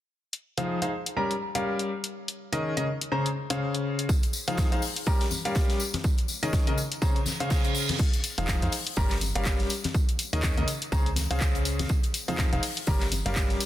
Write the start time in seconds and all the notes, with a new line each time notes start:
0.33 closed hi-hat
0.57 F3 D#4 G#4 C5 F5, closed hi-hat
0.82 D#4 G#4 C5 F5, closed hi-hat
1.06 closed hi-hat
1.16 G3 C#4 G4 A#4 A#5
1.31 closed hi-hat
1.55 G3 C#4 G4 A#4 F5, closed hi-hat
1.79 closed hi-hat
2.04 closed hi-hat
2.28 closed hi-hat
2.52 D#3 C#4 G#4 A#4 D#5, closed hi-hat
2.77 C#3 C#4 G#4 A#4 D#5, closed hi-hat
3.01 closed hi-hat
3.12 C#3 C#4 G#4 C5 A#5
3.26 closed hi-hat
3.50 C#3 C#4 G#4 C5 F5, closed hi-hat
3.75 closed hi-hat
3.99 closed hi-hat
4.09 kick, tambourine
4.23 closed hi-hat, tambourine
4.33 tambourine
4.48 F3 D#4 G#4 C5 F5, closed hi-hat
4.57 kick, snare, tambourine, high conga
4.72 D#4 G#4 C5 F5, closed hi-hat, tambourine
4.82 open hi-hat, tambourine
4.96 closed hi-hat, tambourine
5.06 G3 C#4 G4 A#4 A#5, kick, tambourine
5.21 snare, closed hi-hat, tambourine
5.31 tambourine, high conga
5.45 G3 C#4 G4 A#4 F5, closed hi-hat, tambourine
5.55 kick, snare, tambourine
5.70 snare, closed hi-hat, tambourine
5.80 tambourine
5.93 snare, closed hi-hat, tambourine, high conga
6.04 kick, tambourine
6.18 closed hi-hat, tambourine
6.28 tambourine
6.43 D#3 C#4 G#4 A#4 D#5, closed hi-hat, tambourine
6.53 kick, snare, tambourine, high conga
6.67 C#3 C#4 G#4 A#4 D#5, closed hi-hat, tambourine
6.78 tambourine
6.92 closed hi-hat, tambourine
7.02 C#3 C#4 G#4 C5 A#5, kick, tambourine, reverse cymbal
7.16 closed hi-hat, tambourine
7.26 snare, tambourine, high conga
7.40 C#3 C#4 G#4 C5 F5, closed hi-hat
7.50 kick, snare, tambourine
7.64 closed hi-hat, tambourine
7.75 tambourine
7.89 snare, closed hi-hat, tambourine, high conga
7.99 kick, crash, tambourine
8.13 closed hi-hat, tambourine
8.24 open hi-hat, tambourine
8.38 F1 F3 D#4 G#4 C5 F5, closed hi-hat
8.48 kick, snare, clap, tambourine, high conga
8.62 F2 D#4 G#4 C5 F5, closed hi-hat, tambourine
8.72 open hi-hat, tambourine
8.87 closed hi-hat
8.96 G1 G3 C#4 G4 A#4 A#5, kick, tambourine
9.11 snare, clap, closed hi-hat, tambourine
9.21 open hi-hat, tambourine, high conga
9.35 G1 G3 C#4 G4 A#4 F5, closed hi-hat, tambourine
9.45 kick, snare, clap, tambourine
9.59 snare, closed hi-hat, tambourine
9.70 open hi-hat, tambourine
9.84 snare, closed hi-hat, tambourine, high conga
9.94 kick, tambourine
10.09 closed hi-hat, tambourine
10.19 open hi-hat, tambourine
10.33 D#2 D#3 C#4 G#4 A#4 D#5, closed hi-hat
10.43 kick, snare, clap, tambourine, high conga
10.57 D#2 C#3 C#4 G#4 A#4 D#5, closed hi-hat, tambourine
10.68 open hi-hat, tambourine
10.82 closed hi-hat, tambourine
10.92 C#2 C#3 C#4 G#4 C5 A#5, kick, tambourine
11.06 closed hi-hat, tambourine
11.16 snare, open hi-hat, tambourine, high conga
11.30 C#2 C#3 C#4 G#4 C5 F5, closed hi-hat
11.40 kick, snare, clap, tambourine
11.55 closed hi-hat, tambourine
11.65 open hi-hat, tambourine
11.79 snare, closed hi-hat, tambourine, high conga
11.89 kick, tambourine
12.03 closed hi-hat, tambourine
12.14 open hi-hat, tambourine
12.28 F2 F3 D#4 G#4 C5 F5, closed hi-hat, tambourine
12.38 kick, snare, clap, tambourine, high conga
12.52 F1 D#4 G#4 C5 F5, closed hi-hat, tambourine
12.63 open hi-hat, tambourine
12.77 closed hi-hat, tambourine
12.87 G1 G3 C#4 G4 A#4 A#5, kick, tambourine
13.01 snare, clap, closed hi-hat, tambourine
13.12 open hi-hat, tambourine, high conga
13.26 G1 G3 C#4 G4 A#4 F5, closed hi-hat, tambourine
13.36 kick, snare, clap, tambourine
13.49 snare, closed hi-hat, tambourine
13.60 open hi-hat, tambourine